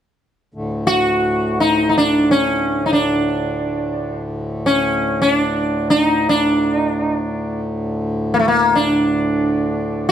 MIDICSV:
0, 0, Header, 1, 3, 480
1, 0, Start_track
1, 0, Key_signature, 2, "major"
1, 0, Tempo, 500000
1, 9714, End_track
2, 0, Start_track
2, 0, Title_t, "Sitar"
2, 0, Program_c, 0, 104
2, 834, Note_on_c, 0, 66, 80
2, 1536, Note_off_c, 0, 66, 0
2, 1539, Note_on_c, 0, 63, 66
2, 1806, Note_off_c, 0, 63, 0
2, 1818, Note_on_c, 0, 63, 46
2, 1883, Note_off_c, 0, 63, 0
2, 1897, Note_on_c, 0, 62, 67
2, 2214, Note_off_c, 0, 62, 0
2, 2218, Note_on_c, 0, 61, 66
2, 2740, Note_off_c, 0, 61, 0
2, 2744, Note_on_c, 0, 63, 45
2, 2807, Note_off_c, 0, 63, 0
2, 2811, Note_on_c, 0, 62, 57
2, 4037, Note_off_c, 0, 62, 0
2, 4474, Note_on_c, 0, 61, 66
2, 5004, Note_off_c, 0, 61, 0
2, 5007, Note_on_c, 0, 61, 74
2, 5123, Note_off_c, 0, 61, 0
2, 5123, Note_on_c, 0, 62, 74
2, 5661, Note_off_c, 0, 62, 0
2, 5665, Note_on_c, 0, 62, 73
2, 5771, Note_off_c, 0, 62, 0
2, 5771, Note_on_c, 0, 63, 73
2, 6037, Note_off_c, 0, 63, 0
2, 6041, Note_on_c, 0, 62, 70
2, 6492, Note_off_c, 0, 62, 0
2, 6492, Note_on_c, 0, 63, 70
2, 6597, Note_off_c, 0, 63, 0
2, 6597, Note_on_c, 0, 62, 70
2, 6741, Note_off_c, 0, 62, 0
2, 6741, Note_on_c, 0, 63, 70
2, 6847, Note_off_c, 0, 63, 0
2, 6847, Note_on_c, 0, 62, 70
2, 7293, Note_off_c, 0, 62, 0
2, 8006, Note_on_c, 0, 58, 63
2, 8055, Note_off_c, 0, 58, 0
2, 8059, Note_on_c, 0, 57, 50
2, 8129, Note_off_c, 0, 57, 0
2, 8140, Note_on_c, 0, 58, 57
2, 8405, Note_on_c, 0, 62, 69
2, 8407, Note_off_c, 0, 58, 0
2, 9680, Note_off_c, 0, 62, 0
2, 9684, Note_on_c, 0, 66, 77
2, 9714, Note_off_c, 0, 66, 0
2, 9714, End_track
3, 0, Start_track
3, 0, Title_t, "Harmonium"
3, 0, Program_c, 1, 20
3, 519, Note_on_c, 1, 38, 51
3, 531, Note_on_c, 1, 45, 53
3, 9714, Note_off_c, 1, 38, 0
3, 9714, Note_off_c, 1, 45, 0
3, 9714, End_track
0, 0, End_of_file